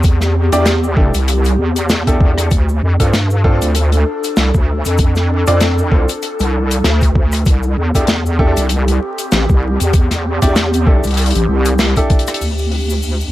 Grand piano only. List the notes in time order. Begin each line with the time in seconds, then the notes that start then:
0.53 D4 E4 G4 D5
0.97 D4 E4 G4 A4
2.07 D4 E4 G4 A4
3.00 C4 D4 F4 A4
3.44 C4 D4 F4 A4
5.47 C4 D4 F4 D5
5.92 C4 D4 F4 A4
7.95 D4 E4 G4 A4
8.39 D4 E4 G4 A4
10.42 D4 E4 G4 D5
10.86 D4 E4 G4 A4
11.97 D4 E4 G4 A4